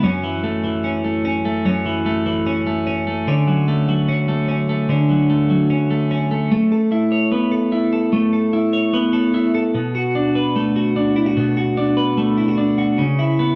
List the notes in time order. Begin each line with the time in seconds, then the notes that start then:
0.03 F#2 C#4
0.24 E3
0.43 A3
0.64 E3
0.84 C#4
1.04 A3
1.25 C#4
1.45 A3
1.65 F#2 C#4
1.86 E3
2.06 A3
2.26 E3
2.46 C#4
2.67 A3
2.87 C#4
3.07 A3
3.27 D3 C#4
3.48 F#3
3.68 A3
3.89 F#3
4.08 C#4
4.28 A3
4.48 C#4
4.69 A3
4.89 D3 C#4
5.10 F#3
5.30 A3
5.50 F#3
5.70 C#4
5.91 A3
6.11 C#4
6.31 A3
6.52 A3
6.72 A4
6.92 E4
7.12 C#5
7.32 B3
7.52 A4
7.72 E4
7.93 A4
8.13 A3
8.33 A4
8.53 E4
8.73 C#5
8.93 B3
9.13 A4
9.34 E4
9.55 A4
9.74 B2
9.95 F#4
10.15 D4
10.35 B4
10.56 A3
10.76 F#4
10.96 D4
11.16 E4
11.26 F#4
11.37 B2
11.57 F#4
11.77 D4
11.97 B4
12.18 A3
12.38 E4
12.48 F#4
12.58 D4
12.78 F#4
12.98 C#3
13.19 E4
13.39 B3